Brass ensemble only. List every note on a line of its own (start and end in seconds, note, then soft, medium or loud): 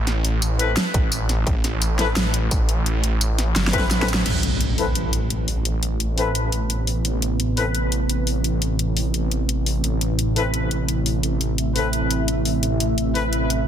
0.59 0.71 C4 medium
0.59 0.71 E4 medium
0.59 0.71 A4 medium
0.59 0.71 B4 loud
1.99 2.06 C4 medium
1.99 2.06 E4 medium
1.99 2.06 A4 medium
1.99 2.06 B4 loud
3.73 3.85 C4 loud
3.73 3.85 E4 medium
3.73 3.85 A4 medium
3.73 3.85 B4 loud
4.00 4.07 C4 medium
4.00 4.07 E4 medium
4.00 4.07 A4 medium
4.00 4.07 B4 medium
4.78 4.85 C4 medium
4.78 4.85 E4 medium
4.78 4.85 A4 medium
4.78 4.85 B4 medium
6.18 6.29 C4 medium
6.18 6.29 E4 medium
6.18 6.29 A4 medium
6.18 6.29 B4 loud
7.57 7.64 C4 medium
7.57 7.64 E4 medium
7.57 7.64 A4 medium
7.57 7.64 B4 loud
10.36 10.43 C4 medium
10.36 10.43 E4 medium
10.36 10.43 A4 medium
10.36 10.43 B4 loud
11.76 11.87 C4 medium
11.76 11.87 E4 medium
11.76 11.87 A4 medium
11.76 11.87 B4 medium
13.15 13.22 C4 medium
13.15 13.22 E4 medium
13.15 13.22 A4 medium
13.15 13.22 B4 loud